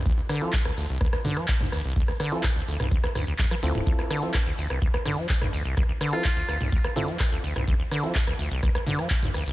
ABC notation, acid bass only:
X:1
M:4/4
L:1/16
Q:1/4=126
K:Dm
V:1 name="Acid bass" clef=bass
D,, D,, D, F, F,, D,, D,, C,, D,, D,, D, F, F,, D,, D,, C,, | D,, D,, D, F, F,, D,, D,, C,, D,, D,, D,, D,, F,, F, D,, D,,, | D,, D,, D, F, F,, D,, D,, C,, D,, D,, D, F, F,, D,, D,, C,, | D,, D,, D, F, F,, D,, D,, C,, D,, D,, D, F, F,, D,, D,, C,, |
D,, D,, D, F, F,, D,, D,, C,, D,, D,, D, F, F,, D,, D,, C,, |]